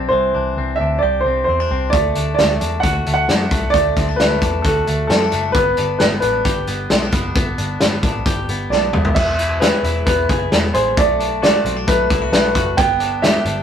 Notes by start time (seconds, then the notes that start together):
Already playing: E3 C4 D4 G4 D5
0.09 C2 E3 C5
0.35 C2 D4
0.57 C2 C4
0.76 E5
0.80 D2 D4
0.99 D5
1.03 C2 G4
1.21 C5
1.25 C2 C4
1.44 E2 C5
1.49 C4
1.60 D4
1.71 C2 C4
1.90 D2 A3 D5, kick, closed hi-hat
2.15 D2 D4, closed hi-hat
2.34 D5
2.39 D2 A3, snare, closed hi-hat
2.61 E2 D4, closed hi-hat
2.80 D2 F#5, kick, closed hi-hat
2.85 F#4
3.06 D2 A3, closed hi-hat
3.14 F#5
3.28 F#2 D4, snare, closed hi-hat
3.51 C2 A3, kick, closed hi-hat
3.70 D2 D5, kick
3.74 A3, closed hi-hat
3.97 D2 C4, kick, closed hi-hat
4.09 D4
4.16 D2 B4, snare, closed hi-hat
4.21 A3
4.42 E2 D4, kick, closed hi-hat
4.62 D2 F#4 A4, kick, closed hi-hat
4.87 D2 A3, closed hi-hat
5.07 F#2 C4 A4, snare, closed hi-hat
5.22 D4
5.32 F#1 A3, closed hi-hat
5.52 G1 B3 B4, kick, closed hi-hat
5.77 G1 D4, closed hi-hat
5.99 G1 B3 B4, snare, closed hi-hat
6.20 A1 D4 B4, closed hi-hat
6.45 G1 G4, kick, closed hi-hat
6.67 G1 B3, closed hi-hat
6.90 B1 C4, snare, closed hi-hat
7.02 D4
7.12 F#1 B3, kick, closed hi-hat
7.35 G1 B3, kick, closed hi-hat
7.58 G1 D4, closed hi-hat
7.81 G1 B3, snare, closed hi-hat
8.03 A1 D4, kick, closed hi-hat
8.26 G1 G4, kick, closed hi-hat
8.48 G1 B3, closed hi-hat
8.70 B1 D4 D5, snare
8.93 F#1 B3, mid tom
9.05 floor tom
9.15 E1 E3 E5, kick, crash
9.39 E4, closed hi-hat
9.60 G#4 B4, snare, closed hi-hat
9.83 E1 E4, closed hi-hat
10.06 E1 B3 B4, kick, closed hi-hat
10.29 F#1 G#4, kick, closed hi-hat
10.52 E1 B3, snare, closed hi-hat
10.74 A1 G#4 C5, closed hi-hat
10.97 B1 A3 D5, kick, closed hi-hat
11.20 D4, closed hi-hat
11.42 F#4 D5, snare, closed hi-hat
11.65 B1 C4, closed hi-hat
11.77 D4
11.87 B1 A3 B4, kick, closed hi-hat
12.10 C2 E4, kick, closed hi-hat
12.22 F#4
12.32 B1 A3 B4, snare, closed hi-hat
12.55 F#1 F#4, kick, closed hi-hat
12.77 G1 B3 G5, kick, closed hi-hat
13.00 D4, closed hi-hat
13.22 G4 E5, snare, closed hi-hat
13.45 G1 D4, closed hi-hat